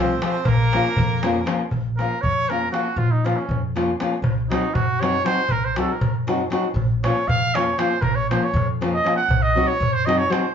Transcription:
Already playing: C2 A3
0.00 F3 C4 F4 C5
0.21 F3 A3 C4 F4 C5, darbuka tek
0.45 A#1 A#3 A#4, darbuka dum
0.59 darbuka tek
0.73 F3 A#3 C#4 F4, darbuka tek
0.85 darbuka tek
0.97 F2, darbuka dum
1.10 darbuka tek
1.23 F3 A#3 C#4 F4, darbuka tek
1.36 darbuka tek
1.46 F3 A#3 C#4 F4, darbuka tek
1.59 darbuka tek
1.71 A#1, darbuka dum
1.97 F3 A#3 C#4 F4 A#4, darbuka tek
2.11 darbuka tek
2.21 F2 C#5, darbuka dum
2.49 F3 A#3 C#4 F4 A#4, darbuka tek
2.62 darbuka tek
2.72 F3 A#3 C#4 F4 F#4, darbuka tek
2.96 A#1 F4, darbuka dum
3.11 D#4
3.24 F3 A#3 C#4 F4, darbuka tek
3.37 C#4, darbuka tek
3.49 F2, darbuka dum
3.76 F3 A#3 C#4 F4, darbuka tek
3.88 darbuka tek
4.00 F3 A#3 C#4 F4, darbuka tek
4.22 C2, darbuka dum
4.50 F#3 C4 D#4 F#4, darbuka tek
4.64 darbuka tek
4.74 F#2 F#4, darbuka dum
5.01 F#3 C4 D#4 F#4 C#5, darbuka tek
5.14 darbuka tek
5.24 F#3 C4 D#4 F#4 C5, darbuka tek
5.49 C2 A#4, darbuka dum
5.62 C5, darbuka tek
5.76 F#3 C4 D#4 F#4 A4, darbuka tek
5.89 A#4, darbuka tek
6.01 F#2, darbuka dum
6.15 darbuka tek
6.27 F#3 C4 D#4 F#4, darbuka tek
6.40 darbuka tek
6.50 F#3 C4 D#4 F#4, darbuka tek
6.65 darbuka tek
6.74 A#1, darbuka dum
7.04 F3 A#3 C#4 F4 C#5, darbuka tek
7.17 darbuka tek
7.28 F2 F5, darbuka dum
7.54 F3 A#3 C#4 F4 C#5, darbuka tek
7.67 darbuka tek
7.78 F3 A#3 C#4 F4 C5, darbuka tek
8.01 A#1 A#4, darbuka dum
8.15 C#5
8.30 F3 A#3 C#4 F4 C5, darbuka tek
8.44 C#5, darbuka tek
8.54 F2, darbuka dum
8.81 F3 A#3 C#4 F4, darbuka tek
8.93 D#5, darbuka tek
9.04 F3 A#3 C#4 F4, darbuka tek
9.16 F#5
9.28 C2, darbuka dum
9.42 D#5
9.55 F#3 C4 D#4 F#4
9.67 C#5, darbuka tek
9.80 F#2, darbuka dum
9.94 C5
10.06 F#3 C4 D#4 F#4 D#5, darbuka tek
10.18 C#5, darbuka tek
10.29 F#3 C4 D#4 F#4 C5, darbuka tek

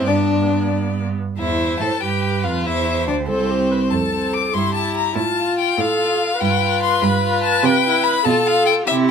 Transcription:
0.06 G2 B3 D4 D5
1.38 E2 E4 C5 E5
1.80 A2 A4 A5
2.01 G2 G4 B4 G5
2.44 F2 F4 F5
2.65 E2 E4 C5 E5
3.07 D2 D4 D5
3.28 C2 C4 A4 C5
3.51 G4
3.71 B4
3.91 F2 A4 A5
4.13 C4
4.34 D6
4.54 G2 E4 G4 C6
4.74 E4 A5
4.97 A#5
5.16 A2 F4 A5
5.37 F4
5.59 G5
5.78 A2 A4 F5
5.99 F4
6.40 G2 F4 B4 G5
6.62 F4
6.83 C6
7.02 G2 B5
7.23 F4
7.43 A5
7.64 C3 G5
7.86 E4
8.03 B5
8.25 B2 F4 A4 A5
8.46 F4 F5
8.66 G5
8.87 C3 E4 G4 E5

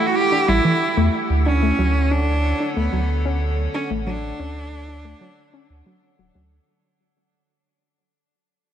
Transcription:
Already playing: E4 A4 F#5 G5
0.07 F#4
0.16 G4
0.32 D4
0.48 A1 G3 E4
0.65 E3
0.97 E2 A3
1.30 D2
1.46 D3 C#4 D4 A4 C#5 F#5
1.62 A3
1.79 D2 F#3
2.11 C#4 D4
2.60 D4
2.77 D2 A3 B3
2.93 D2 F#3
3.25 C#4
3.74 C#4 D4
3.91 A1 A3
4.07 F#3 D4
4.39 D2 C#4
4.88 D4
5.05 A3
5.21 F#3
5.54 C#4
5.70 D2
5.86 F#3
6.19 D1 F#3
6.35 D2 F#3

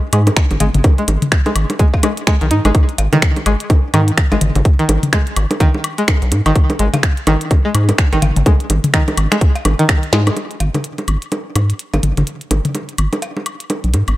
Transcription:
0.13 G#2 G#3, closed hi-hat, high woodblock
0.27 closed hi-hat, low bongo
0.37 finger snap, kick, closed hi-hat
0.51 G#1, closed hi-hat, low bongo
0.60 G#1 G#3, closed hi-hat, mid tom, cowbell
0.74 G#1, closed hi-hat, mid tom
0.84 kick, closed hi-hat, low bongo
0.98 G#3, closed hi-hat
1.08 G#1, closed hi-hat, low bongo
1.22 closed hi-hat, mid tom
1.32 finger snap, kick, closed hi-hat
1.46 G#3, closed hi-hat, low bongo
1.56 G#1, closed hi-hat, high woodblock
1.70 closed hi-hat, low bongo
1.79 G#3, kick, closed hi-hat
1.94 kick, cowbell
2.03 G#3, closed hi-hat, low bongo, high woodblock
2.17 closed hi-hat
2.27 G#3, finger snap, kick, closed hi-hat, low bongo
2.41 B1 D#3, closed hi-hat
2.51 G#2 D#4, closed hi-hat
2.65 G#1 G#3, closed hi-hat, low bongo, high woodblock
2.75 kick, closed hi-hat, low bongo
2.89 closed hi-hat
2.98 G#1, closed hi-hat, cowbell
3.13 D#3, closed hi-hat, mid tom, low bongo
3.22 finger snap, kick, closed hi-hat
3.36 closed hi-hat, low bongo
3.46 G#1 G#3, closed hi-hat, high woodblock
3.60 closed hi-hat
3.70 kick, closed hi-hat, low bongo
3.94 G#2 D#3, closed hi-hat, low bongo, high woodblock
4.08 closed hi-hat
4.18 finger snap, kick, closed hi-hat
4.32 G#1 G#3, closed hi-hat, cowbell, low bongo
4.41 G#1, closed hi-hat, mid tom
4.55 G#1, closed hi-hat, mid tom, low bongo
4.65 kick, closed hi-hat
4.79 D#3, closed hi-hat
4.89 G#1, closed hi-hat, low bongo
5.03 closed hi-hat, mid tom
5.13 G#3, finger snap, kick, closed hi-hat, low bongo
5.27 closed hi-hat
5.36 G#1, closed hi-hat, high woodblock
5.51 closed hi-hat, low bongo
5.60 D#3, kick, closed hi-hat, cowbell
5.74 low bongo
5.84 closed hi-hat, high woodblock
5.98 G#3, closed hi-hat
6.08 finger snap, kick, closed hi-hat, low bongo
6.22 B1, closed hi-hat
6.32 G#2, closed hi-hat, low bongo
6.46 G#1 D#3, closed hi-hat, high woodblock
6.56 kick, closed hi-hat
6.70 closed hi-hat, low bongo
6.79 G#1 G#3, closed hi-hat
6.94 closed hi-hat, mid tom, cowbell, low bongo
7.03 finger snap, kick, closed hi-hat
7.17 closed hi-hat
7.27 G#1 D#3, closed hi-hat, low bongo, high woodblock
7.41 closed hi-hat
7.51 kick, closed hi-hat, low bongo
7.65 G#3
7.75 G#2, closed hi-hat, high woodblock
7.89 closed hi-hat, low bongo
7.98 finger snap, kick, closed hi-hat
8.13 G#1 D#3, closed hi-hat, low bongo
8.22 G#1, closed hi-hat, mid tom, cowbell
8.36 G#1, closed hi-hat, mid tom
8.46 G#3, kick, closed hi-hat, low bongo
8.60 closed hi-hat
8.70 G#1, closed hi-hat, low bongo
8.84 closed hi-hat, mid tom
8.94 D#3, finger snap, kick, closed hi-hat
9.08 closed hi-hat, low bongo
9.18 G#1, closed hi-hat, high woodblock
9.32 G#3, finger snap, closed hi-hat, low bongo
9.41 kick, closed hi-hat
9.55 closed hi-hat, cowbell
9.65 G#1, closed hi-hat, low bongo, high woodblock
9.79 D#3, closed hi-hat
9.89 finger snap, kick, closed hi-hat, low bongo
10.03 closed hi-hat
10.13 G#2 G#3, snare, closed hi-hat
10.27 closed hi-hat, low bongo, high woodblock
10.37 closed hi-hat, low bongo
10.51 closed hi-hat
10.60 G#1, closed hi-hat, cowbell
10.75 closed hi-hat, mid tom, low bongo
10.84 closed hi-hat
10.98 closed hi-hat, low bongo
11.08 G#1, closed hi-hat, high woodblock
11.22 closed hi-hat
11.32 closed hi-hat, low bongo
11.56 G#2, closed hi-hat, low bongo, high woodblock
11.70 closed hi-hat
11.79 closed hi-hat
11.94 G#1, closed hi-hat, cowbell, low bongo
12.03 G#1, closed hi-hat, mid tom
12.17 G#1, closed hi-hat, mid tom, low bongo
12.27 closed hi-hat
12.41 closed hi-hat
12.51 G#1, closed hi-hat, low bongo
12.65 closed hi-hat, mid tom
12.75 closed hi-hat, low bongo
12.89 closed hi-hat
12.98 G#1, closed hi-hat, high woodblock
13.13 closed hi-hat, low bongo
13.22 closed hi-hat, cowbell
13.37 low bongo
13.46 closed hi-hat, high woodblock
13.60 closed hi-hat
13.70 closed hi-hat, low bongo
13.84 B1, closed hi-hat
13.94 G#2, closed hi-hat, low bongo
14.08 G#1, closed hi-hat, high woodblock

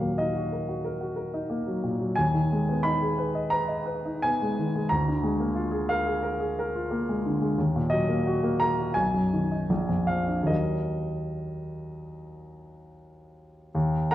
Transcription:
Already playing: D#2 A#2 F#3 F5
0.01 A#3
0.18 D#4 D#5
0.35 F#4
0.52 A#4
0.68 F#4
0.84 A#4
1.01 F#4
1.16 A#4
1.34 D#4
1.50 A#3
1.67 F#3
1.83 A#2
1.99 F#3
2.16 D#2 G#5
2.34 D#3
2.52 G#3
2.69 B3
2.83 D#4 B5
3.02 G#4
3.18 B4
3.35 D#5
3.50 B4 A#5
3.68 D#5
3.86 B4
4.05 D#4
4.22 B3 G#5
4.42 G#3
4.59 D#3
4.76 G#3
4.89 D2 A#5
5.08 D3
5.23 G#3
5.39 A#3
5.55 F4
5.71 G#4
5.89 A#4 F5
6.06 G#4
6.23 A#4
6.40 G#4
6.59 A#4
6.75 F4
6.91 A#3
7.09 G#3
7.26 D3
7.42 G#3
7.58 D#2
7.76 A#2
7.90 F#3 D#5
8.09 A#3
8.27 F#4
8.43 A#3
8.60 A#4 A#5
8.78 F#4
8.94 B1 G#5
9.14 F#2
9.33 D#3
9.51 D#4
9.70 A#1
9.89 F2
10.07 F3 F5
10.28 D4
10.43 D#2 F#3 D#4 A#4 D#5
13.75 D#2
14.11 A#4 A#5

